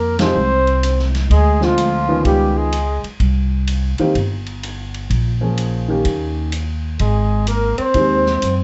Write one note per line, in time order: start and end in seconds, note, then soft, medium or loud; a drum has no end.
0.00 0.32 F2 medium
0.00 0.18 A#3 medium
0.00 0.20 A#4 medium
0.18 0.34 F3 medium
0.18 0.34 G#3 medium
0.18 1.10 C4 medium
0.18 0.35 D#4 medium
0.18 0.35 G4 medium
0.18 1.11 C5 medium
0.18 snare medium
0.18 ride medium
0.36 1.26 C2 medium
0.67 ride soft
0.83 hi-hat pedal medium
0.83 ride medium
0.99 snare soft
1.15 snare soft
1.15 ride soft
1.30 2.21 D2 medium
1.30 1.64 G#3 medium
1.30 1.66 G#4 medium
1.30 kick soft
1.30 ride soft
1.61 2.05 D3 medium
1.61 2.25 F3 medium
1.61 2.06 G#3 soft
1.61 2.06 C4 soft
1.61 2.06 F4 medium
1.61 snare soft
1.65 2.25 F4 medium
1.78 hi-hat pedal soft
1.78 ride soft
2.08 2.69 D#3 medium
2.08 2.70 B3 medium
2.08 2.70 C#4 medium
2.08 2.70 F4 medium
2.25 3.00 C#2 medium
2.25 2.57 G3 medium
2.25 2.59 G4 medium
2.25 kick soft
2.25 ride soft
2.56 3.04 G#3 medium
2.56 3.05 G#4 medium
2.72 hi-hat pedal soft
2.72 ride medium
3.04 muted upright bass stroke soft
3.04 ride soft
3.20 3.95 C2 medium
3.20 kick soft
3.20 ride soft
3.67 hi-hat pedal soft
3.67 ride medium
3.98 4.14 D#3 medium
3.98 4.14 A#3 medium
3.98 4.14 C4 medium
3.98 4.15 G4 medium
3.98 ride soft
4.15 5.06 G1 medium
4.15 kick soft
4.15 ride soft
4.46 ride soft
4.63 hi-hat pedal soft
4.63 ride medium
4.94 ride soft
5.10 6.01 A#1 medium
5.10 kick soft
5.10 ride soft
5.41 5.85 F3 soft
5.41 5.86 A#3 soft
5.41 5.86 C#4 soft
5.41 5.86 G#4 soft
5.57 hi-hat pedal soft
5.57 ride soft
5.88 6.49 D#3 medium
5.88 6.49 A#3 soft
5.88 6.50 C#4 medium
5.88 6.50 G4 medium
6.05 6.96 D#2 medium
6.05 kick soft
6.05 ride medium
6.52 hi-hat pedal soft
6.52 ride medium
6.99 7.74 G#1 medium
6.99 7.44 G#3 medium
6.99 7.45 G#4 medium
6.99 kick soft
6.99 ride soft
7.47 7.77 A#3 medium
7.47 7.77 A#4 medium
7.47 hi-hat pedal soft
7.47 ride medium
7.78 8.64 C4 medium
7.78 8.64 C5 medium
7.78 muted upright bass stroke soft
7.78 ride soft
7.94 8.39 D#2 medium
7.94 8.23 D#3 medium
7.94 8.23 G#3 soft
7.94 8.24 C4 soft
7.94 8.24 G4 medium
7.94 kick soft
7.94 ride soft
8.26 snare soft
8.42 8.64 F#2 medium
8.42 hi-hat pedal soft
8.42 ride medium